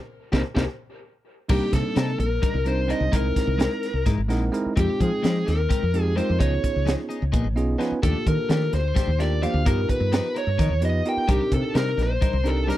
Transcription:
0.32 C2 A#3 C4 D#4 G4 A#4 C5, kick, snare
0.55 C2 A#3 C4 D#4 G4 A#4 C5, kick, snare
1.48 C2 G3 A#3 C4 D4 D#4 G4 A#4, kick, crash
1.73 C3 A4, kick, snare, closed hi-hat
1.95 C3 G3 D4 D#4 A#4, snare, closed hi-hat
2.19 A#1 A#4, closed hi-hat
2.42 G3 D4 D#4 A#4, kick, closed hi-hat
2.54 C2
2.65 G3 C4 D4 D#4 A#4 C5, closed hi-hat
2.88 G3 C4 D4 D#4 A#4 C5 D#5, closed hi-hat
3.00 C2
3.12 C2 G#3 C4 D#4 E4 A#4, kick, closed hi-hat
3.36 kick, snare, closed hi-hat
3.47 C2
3.58 G#3 D#4 E4 A#4, snare, closed hi-hat
3.83 snare, closed hi-hat
3.93 C2
4.06 G#2 G#3 D#4 E4 A#4, kick, snare, closed hi-hat
4.18 G#1
4.29 A#1 G#3 C4 D#4 E4 A#4 F#5, snare, closed hi-hat
4.52 G#3 C4 D#4 E4 A#4 D#5, closed hi-hat
4.66 muted fretless electric bass stroke
4.76 F2 G#3 C4 D#4 F4 G4 G5, kick, closed hi-hat
5.01 F3 G#4, kick, closed hi-hat
5.23 F3 G#3 C4 D#4 G4, snare, closed hi-hat
5.46 D#2 C4 D#4 G4 A#4, snare, closed hi-hat
5.69 G#3 C4 D#4 G4, kick, closed hi-hat
5.83 F2
5.94 G#3 C4 D#4 F4 G4, closed hi-hat
6.02 G#4
6.16 G#3 C4 D#4 F4 G4 A#4 C5, closed hi-hat
6.29 F2
6.39 C#2 F3 B3 C#4 D#4 F4 G#4 C#5, kick, closed hi-hat
6.64 kick, closed hi-hat
6.76 C#2
6.85 F3 B3 D#4 G#4, snare, closed hi-hat
7.09 B3 D#4 G#4, closed hi-hat
7.22 C#2
7.32 A#2 F3 B3 D#4 G#4, kick, closed hi-hat
7.44 G#1
7.56 B1 B3 C#4 D#4 F4 G#4 D#5, closed hi-hat
7.78 F3 B3 C#4 D#4 F4 G#4 B4 G#5, snare, closed hi-hat
7.91 muted fretless electric bass stroke
8.02 D#2 F3 A3 A#3 D4 F4 G4 A4, kick, closed hi-hat
8.26 D#3 A#4, kick, closed hi-hat
8.49 D#3 F3 A3 D4 G4 A#4, snare, closed hi-hat
8.73 D2 C5, snare, closed hi-hat
8.94 F3 A3 D4 G4, kick, snare, closed hi-hat
9.07 D#2
9.19 A3 A#3 D4 F4 G4 A#4 D5, snare, closed hi-hat
9.41 F3 A3 A#3 D4 F4 G4 C5 F5, closed hi-hat
9.54 D2
9.65 G2 F3 B3 D#4 F4 G4 A#4, kick, closed hi-hat
9.89 B4, muted fretless electric bass stroke, kick, closed hi-hat
10.00 G2
10.12 F3 B3 D#4 A#4 B4, snare, closed hi-hat
10.35 B3 D#4 A#4 C#5, closed hi-hat
10.47 G2
10.58 D#3 F3 B3 D#4 A#4, kick, closed hi-hat
10.69 D#2
10.81 F2 B3 D#4 F4 G4 B4 D#5, closed hi-hat
11.05 B3 D#4 F4 G4 A#4 G5, closed hi-hat
11.17 muted fretless electric bass stroke
11.28 C2 G3 C4 D4 D#4 G4 A#4, kick, closed hi-hat
11.52 C3 A4, kick, closed hi-hat
11.74 C3 G3 D4 D#4 A#4, snare, closed hi-hat
11.97 A#1 D4 D#4 A#4, snare, closed hi-hat
12.02 C5
12.21 G3 D4 D#4 A#4, kick, closed hi-hat
12.33 C2
12.44 C4 D4 D#4 G4 A4 A#4, closed hi-hat
12.67 G3 C4 D4 D#4 G4 A#4, closed hi-hat
12.71 snare

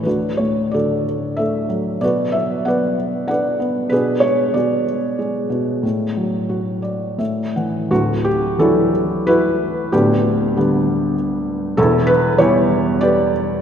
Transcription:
0.03 D2 D4 F#4 B4
0.37 A2 C#5
0.71 D3 F#4 A4 D5
1.37 A3 A4 E5
1.69 F#3
2.01 B2 F#4 B4 D5
2.32 F#3 E5
2.65 B3 B4 D5 F#5
3.28 D4 B4 D5 F#5
3.60 B3
3.90 B2 D4 G#4 B4
4.20 G#3 C#5
4.54 B2 G#4 D5
5.19 G#3
5.50 B2
5.83 A2
6.17 F#3
6.49 F#4
6.82 D5
7.18 A2 E5
7.56 E3 F#5
7.91 D1 D2 A3 F#4
8.25 G4
8.59 E3 F#3 D4 E4 F#4 A4
9.27 E4 F#4 B4
9.92 D1 D2 B3 D4 G4
10.56 D3 G3 B3
11.77 E1 E2 E4 A4
12.07 B4
12.38 E3 G3 B3 E4 G4 C#5
13.01 G4 B4 D5

